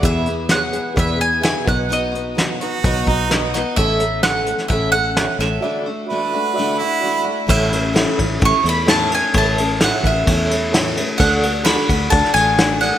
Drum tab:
CC |----------------|----------------|----------------|----------------|
RD |----------------|----------------|----------------|----------------|
HH |x-x-x-x-x-x-x-x-|x-x-x-x-x-x-x-x-|x-x-x-x-x-x-x-x-|----------------|
SD |----o-------o---|----o-------o-o-|----o--o----o-o-|----------------|
BD |o-------o-----o-|--------o-o-----|o-------o-------|----------------|

CC |x---------------|----------------|----------------|
RD |--x-x-x-x-x-x-x-|x-x-x-x-x-x-x-x-|x-x-x-x-x-x-x-x-|
HH |----------------|----------------|----------------|
SD |----o-------o---|----o-------o---|----o----o--o---|
BD |o-----o-o-------|o-----o-o-------|o-----o-o-------|